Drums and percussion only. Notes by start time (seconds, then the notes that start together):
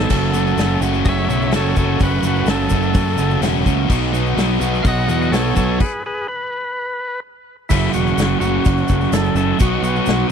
0.10 kick, open hi-hat, crash, shaker
0.34 shaker
0.47 shaker
0.58 snare, open hi-hat, shaker
0.82 shaker
0.93 shaker
1.05 kick, open hi-hat, shaker
1.30 shaker
1.42 shaker
1.51 snare, open hi-hat, shaker
1.76 kick, shaker
2.00 kick, open hi-hat, shaker
2.23 shaker
2.35 shaker
2.46 snare, open hi-hat, shaker
2.69 kick, shaker
2.82 shaker
2.94 kick, open hi-hat, shaker
3.18 shaker
3.30 shaker
3.42 snare, open hi-hat, shaker
3.66 kick, shaker
3.90 kick, crash, shaker
4.14 shaker
4.26 shaker
4.37 snare, open hi-hat, shaker
4.61 shaker
4.74 shaker
4.85 kick, open hi-hat, shaker
5.09 shaker
5.22 shaker
5.33 snare, open hi-hat, shaker
5.56 kick, shaker
5.80 kick, crash
7.70 kick, crash, shaker
7.94 shaker
8.07 shaker
8.18 snare, crash, shaker
8.41 shaker
8.65 kick, crash, shaker
8.77 shaker
8.88 kick, shaker
9.01 snare, shaker
9.12 snare, crash, shaker
9.36 shaker
9.60 kick, crash, shaker
9.84 shaker
9.95 shaker
10.06 snare, crash, shaker